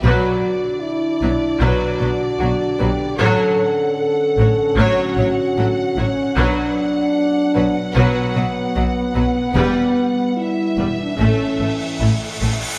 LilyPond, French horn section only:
\new Staff \with { instrumentName = "French horn section" } { \time 4/4 \key b \minor \tempo 4 = 76 fis'4 e'4 fis'4. g'8 | a'4 a'4 fis'4. cis'8 | d'2 b2 | b4 e'8. d'16 cis'4 r4 | }